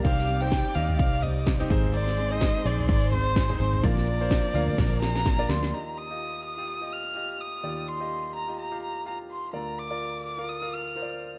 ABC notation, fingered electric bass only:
X:1
M:4/4
L:1/16
Q:"Swing 16ths" 1/4=126
K:Eb
V:1 name="Fingered electric bass" clef=bass
C,,4- C,, z E,,2 C,,6 A,,,2- | A,,,4- A,,, z B,,,2 A,,,6 A,,,2 | B,,,4- B,,, z D,,2 B,,,6 D,,2 | z16 |
z16 | z16 |]